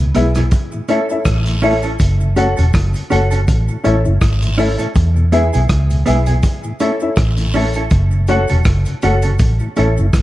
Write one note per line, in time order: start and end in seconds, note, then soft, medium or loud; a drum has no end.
0.00 0.12 C#2 medium
0.00 0.08 E2 medium
0.00 0.08 B2 medium
0.15 0.49 B1 medium
0.15 0.26 G#3 medium
0.15 0.25 B3 medium
0.15 0.26 B3 medium
0.15 0.29 E4 loud
0.15 0.25 E4 medium
0.15 0.26 E4 medium
0.15 0.30 G#4 medium
0.15 0.26 G#4 medium
0.15 0.30 B4 medium
0.15 0.30 E5 loud
0.15 closed hi-hat medium
0.15 cabasa medium
0.35 0.44 E2 medium
0.35 0.44 B2 medium
0.35 0.43 B3 medium
0.35 0.42 E4 medium
0.35 0.42 G#4 medium
0.35 cross-stick medium
0.35 closed hi-hat medium
0.35 cabasa medium
0.51 kick loud
0.51 closed hi-hat medium
0.51 cabasa medium
0.72 0.82 A2 medium
0.72 0.82 E3 medium
0.72 cabasa medium
0.88 1.00 A3 medium
0.88 0.99 C#4 medium
0.88 1.00 C#4 medium
0.88 1.03 E4 medium
0.88 0.99 E4 medium
0.88 1.00 E4 medium
0.88 1.04 A4 medium
0.88 1.00 A4 medium
0.88 1.04 C#5 medium
0.88 1.04 E5 loud
0.88 closed hi-hat medium
0.88 cabasa medium
1.09 1.19 C#4 medium
1.09 1.21 E4 medium
1.09 1.19 E4 medium
1.09 1.21 A4 medium
1.09 1.22 C#5 medium
1.09 1.22 E5 medium
1.09 cabasa medium
1.25 1.96 A1 medium
1.25 kick loud
1.25 cross-stick loud
1.25 closed hi-hat medium
1.25 cabasa medium
1.25 long guiro medium
1.46 1.56 A2 medium
1.46 1.55 E3 medium
1.46 closed hi-hat medium
1.46 cabasa soft
1.62 1.74 A3 medium
1.62 1.73 C#4 medium
1.62 1.74 C#4 medium
1.62 1.77 E4 medium
1.62 1.73 E4 medium
1.62 1.74 E4 medium
1.62 1.77 A4 medium
1.62 1.74 A4 loud
1.62 1.78 C#5 medium
1.62 1.78 E5 loud
1.62 open hi-hat medium
1.62 cabasa soft
1.82 1.90 C#4 soft
1.82 1.90 E4 medium
1.82 1.90 A4 medium
1.82 closed hi-hat medium
1.82 cabasa medium
1.99 2.54 F#1 loud
1.99 kick loud
1.99 closed hi-hat loud
1.99 cabasa medium
2.20 2.29 F#2 medium
2.20 2.29 C#3 medium
2.20 cabasa medium
2.36 2.47 A3 medium
2.36 2.47 C#4 medium
2.36 2.48 C#4 medium
2.36 2.51 F#4 loud
2.36 2.47 F#4 medium
2.36 2.48 F#4 medium
2.36 2.51 A4 loud
2.36 2.48 A4 medium
2.36 2.52 C#5 medium
2.36 2.52 F#5 loud
2.36 closed hi-hat medium
2.36 cabasa medium
2.57 2.73 E1 medium
2.57 2.66 F#2 medium
2.57 2.66 C#3 medium
2.57 2.64 C#4 medium
2.57 2.64 F#4 medium
2.57 2.63 A4 medium
2.57 closed hi-hat soft
2.57 cabasa medium
2.73 2.93 F#1 medium
2.73 kick loud
2.73 cross-stick loud
2.73 closed hi-hat loud
2.73 cabasa medium
2.94 3.03 F#2 medium
2.94 3.03 C#3 medium
2.94 closed hi-hat medium
2.94 cabasa medium
3.10 3.45 F#1 medium
3.10 3.21 A3 medium
3.10 3.21 C#4 medium
3.10 3.25 F#4 medium
3.10 3.21 F#4 medium
3.10 3.25 A4 medium
3.10 3.22 A4 medium
3.10 3.26 C#5 medium
3.10 3.26 F#5 loud
3.10 closed hi-hat medium
3.10 cabasa medium
3.31 3.40 F#2 medium
3.31 3.40 C#3 medium
3.31 3.38 C#4 medium
3.31 3.38 F#4 medium
3.31 3.37 A4 medium
3.31 3.38 C#5 soft
3.31 3.38 F#5 soft
3.31 closed hi-hat medium
3.31 cabasa medium
3.47 3.67 A1 loud
3.47 kick loud
3.47 closed hi-hat loud
3.47 cabasa medium
3.68 3.77 A2 medium
3.68 3.77 E3 medium
3.68 cabasa medium
3.84 4.04 A1 medium
3.84 3.95 A3 medium
3.84 3.95 C#4 medium
3.84 3.99 E4 loud
3.84 3.95 E4 medium
3.84 3.96 E4 medium
3.84 3.99 A4 medium
3.84 3.96 A4 medium
3.84 3.99 C#5 medium
3.84 3.99 E5 loud
3.84 closed hi-hat medium
3.84 cabasa medium
4.05 4.21 F#1 loud
4.05 4.13 C#4 medium
4.05 4.14 E4 medium
4.05 cabasa medium
4.21 4.76 G#1 medium
4.21 kick loud
4.21 cross-stick loud
4.21 closed hi-hat loud
4.21 cabasa medium
4.21 long guiro medium
4.42 4.51 A2 medium
4.42 4.50 E3 medium
4.42 closed hi-hat soft
4.42 cabasa medium
4.58 4.69 A3 medium
4.58 4.68 C#4 medium
4.58 4.69 C#4 medium
4.58 4.69 E4 loud
4.58 4.73 E4 loud
4.58 4.69 E4 medium
4.58 4.73 A4 medium
4.58 4.69 A4 medium
4.58 4.73 C#5 medium
4.58 4.74 E5 loud
4.58 open hi-hat medium
4.58 cabasa medium
4.79 4.87 A2 medium
4.79 4.87 E3 medium
4.79 4.86 C#4 soft
4.79 4.86 E4 medium
4.79 4.85 A4 medium
4.79 closed hi-hat medium
4.79 cabasa medium
4.95 5.50 E2 loud
4.95 kick loud
4.95 closed hi-hat loud
4.95 cabasa medium
5.16 5.24 E2 medium
5.16 5.24 B2 medium
5.16 cabasa medium
5.32 5.43 G#3 medium
5.32 5.43 B3 medium
5.32 5.47 E4 loud
5.32 5.43 E4 medium
5.32 5.47 G#4 loud
5.32 5.44 G#4 medium
5.32 5.47 B4 medium
5.32 5.48 E5 loud
5.32 closed hi-hat medium
5.32 cabasa medium
5.53 5.69 B1 medium
5.53 5.62 E2 medium
5.53 5.61 B2 medium
5.53 5.60 B3 medium
5.53 5.60 E4 medium
5.53 5.60 G#4 medium
5.53 closed hi-hat medium
5.53 cabasa medium
5.69 6.03 C#2 loud
5.69 kick loud
5.69 cross-stick loud
5.69 closed hi-hat loud
5.69 cabasa medium
5.90 5.99 E2 medium
5.90 5.99 B2 medium
5.90 closed hi-hat medium
5.90 cabasa medium
6.06 6.41 B1 medium
6.06 6.17 G#3 medium
6.06 6.16 B3 loud
6.06 6.17 B3 medium
6.06 6.21 E4 medium
6.06 6.17 E4 medium
6.06 6.21 G#4 medium
6.06 6.17 G#4 loud
6.06 6.21 B4 medium
6.06 6.22 E5 loud
6.06 closed hi-hat medium
6.06 cabasa medium
6.26 6.36 E2 medium
6.26 6.36 B2 medium
6.26 6.34 B3 medium
6.26 6.34 E4 medium
6.26 6.33 G#4 medium
6.26 6.34 B4 soft
6.26 6.34 E5 soft
6.26 closed hi-hat medium
6.26 cabasa medium
6.43 kick loud
6.43 closed hi-hat medium
6.43 cabasa medium
6.63 6.73 A2 medium
6.63 6.73 E3 medium
6.63 cabasa medium
6.80 6.91 A3 medium
6.80 6.91 C#4 medium
6.80 6.92 C#4 medium
6.80 6.95 E4 loud
6.80 6.91 E4 medium
6.80 6.92 E4 medium
6.80 6.95 A4 medium
6.80 6.92 A4 medium
6.80 6.95 C#5 medium
6.80 6.96 E5 loud
6.80 closed hi-hat medium
6.80 cabasa medium
7.00 7.10 C#4 medium
7.00 7.13 E4 medium
7.00 7.10 E4 medium
7.00 7.13 A4 medium
7.00 7.13 C#5 medium
7.00 7.13 E5 medium
7.00 cabasa medium
7.16 7.87 A1 medium
7.16 kick loud
7.16 cross-stick loud
7.16 closed hi-hat medium
7.16 cabasa medium
7.16 long guiro medium
7.37 7.47 A2 medium
7.37 7.47 E3 medium
7.37 closed hi-hat medium
7.37 cabasa medium
7.53 7.65 A3 medium
7.53 7.65 C#4 medium
7.53 7.69 E4 medium
7.53 7.65 E4 medium
7.53 7.66 E4 medium
7.53 7.69 A4 medium
7.53 7.66 A4 loud
7.53 7.69 C#5 medium
7.53 7.70 E5 medium
7.53 open hi-hat medium
7.53 cabasa medium
7.74 7.82 E4 medium
7.74 7.82 A4 medium
7.74 closed hi-hat soft
7.74 cabasa medium
7.78 7.83 C#4 soft
7.90 8.45 F#1 loud
7.90 kick loud
7.90 closed hi-hat medium
7.90 cabasa medium
8.11 8.21 F#2 medium
8.11 8.21 C#3 medium
8.11 cabasa medium
8.27 8.39 A3 medium
8.27 8.39 C#4 medium
8.27 8.40 C#4 medium
8.27 8.43 F#4 loud
8.27 8.40 F#4 medium
8.27 8.40 F#4 loud
8.27 8.43 A4 medium
8.27 8.40 A4 medium
8.27 8.43 C#5 loud
8.27 8.44 F#5 loud
8.27 closed hi-hat medium
8.27 cabasa medium
8.48 8.65 E1 medium
8.48 8.58 F#2 medium
8.48 8.58 C#3 medium
8.48 8.57 C#4 medium
8.48 8.56 F#4 medium
8.48 8.56 A4 medium
8.48 closed hi-hat medium
8.48 cabasa medium
8.64 8.85 F#1 medium
8.64 kick loud
8.64 cross-stick loud
8.64 closed hi-hat loud
8.64 cabasa medium
8.85 8.95 F#2 medium
8.85 8.95 C#3 medium
8.85 closed hi-hat medium
8.85 cabasa medium
9.02 9.37 F#1 loud
9.02 9.14 A3 medium
9.02 9.13 C#4 medium
9.02 9.14 C#4 medium
9.02 9.17 F#4 loud
9.02 9.14 F#4 medium
9.02 9.17 A4 medium
9.02 9.14 A4 loud
9.02 9.18 C#5 medium
9.02 9.18 F#5 loud
9.02 closed hi-hat medium
9.02 cabasa medium
9.22 9.32 F#2 medium
9.22 9.32 C#3 medium
9.22 9.30 C#4 medium
9.22 9.30 F#4 medium
9.22 9.30 A4 medium
9.22 9.30 C#5 soft
9.22 9.30 F#5 soft
9.22 closed hi-hat medium
9.22 cabasa medium
9.39 9.59 A1 loud
9.39 kick loud
9.39 closed hi-hat medium
9.39 cabasa medium
9.59 9.69 A2 medium
9.59 9.69 E3 medium
9.59 cabasa medium
9.76 9.96 A1 loud
9.76 9.88 A3 medium
9.76 9.87 C#4 medium
9.76 9.88 C#4 medium
9.76 9.91 E4 medium
9.76 9.88 E4 medium
9.76 9.91 A4 medium
9.76 9.88 A4 loud
9.76 9.91 C#5 medium
9.76 9.92 E5 loud
9.76 closed hi-hat medium
9.76 cabasa medium
9.97 10.13 F#1 loud
9.97 10.06 C#4 medium
9.97 10.06 E4 medium
9.97 cabasa medium
10.13 10.22 G#1 medium
10.13 kick loud
10.13 cross-stick loud
10.13 closed hi-hat medium
10.13 cabasa medium
10.13 long guiro medium